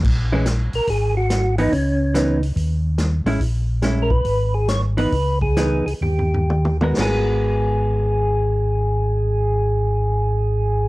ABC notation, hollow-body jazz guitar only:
X:1
M:4/4
L:1/8
Q:"Swing" 1/4=136
K:G#m
V:1 name="Hollow-body jazz guitar"
z [E,G,C] z4 z [E,B,D] | z2 [E,B,D] z4 [G,CE] | z2 [G,CE] z4 [E,B,D] | z2 [E,B,D] z4 [G,B,FA] |
[G,B,FA]8- | [G,B,FA]8 |]